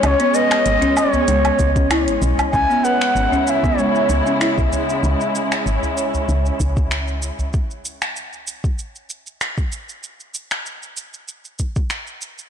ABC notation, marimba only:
X:1
M:4/4
L:1/16
Q:"Swing 16ths" 1/4=96
K:C#m
V:1 name="Marimba"
C B, B z2 C z B, G, z2 C E4 | C B, B z2 C z B, G, z2 C E4 | z16 | z16 |
z16 |]